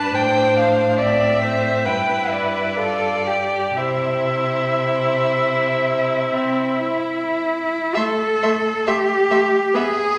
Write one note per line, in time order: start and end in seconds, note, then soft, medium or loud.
0.00 0.13 G2 soft
0.00 1.02 D4 soft
0.00 0.16 B4 soft
0.00 0.16 A5 medium
0.14 1.87 A2 soft
0.14 0.99 C5 soft
0.14 0.58 G5 medium
0.57 0.99 F5 soft
0.98 1.89 C4 soft
0.98 1.41 D5 soft
0.98 1.87 E5 soft
1.41 1.87 C5 soft
1.85 3.75 G2 soft
1.85 2.79 E4 soft
1.85 2.78 B4 soft
1.85 2.32 G5 soft
2.31 3.79 D5 soft
2.78 3.28 F4 soft
2.78 3.26 A4 soft
3.26 3.79 G4 soft
3.26 3.78 G4 soft
3.76 6.29 C3 soft
3.76 7.73 E4 soft
3.76 6.85 C5 soft
3.76 7.41 E5 soft
6.32 6.80 C4 soft
6.84 7.96 E4 soft
7.95 8.04 A3 soft
7.95 8.89 A4 medium
7.95 8.03 E5 soft
7.95 8.04 C6 soft
8.43 8.52 A3 soft
8.43 8.51 E5 soft
8.43 8.51 C6 soft
8.87 8.95 A3 soft
8.87 9.76 G4 medium
8.87 8.95 E5 soft
8.87 8.95 C6 soft
9.31 9.39 A3 soft
9.31 9.39 E5 soft
9.31 9.39 C6 soft
9.74 9.82 B3 soft
9.74 10.18 G#4 medium
9.74 9.84 E5 soft
9.74 9.83 B5 soft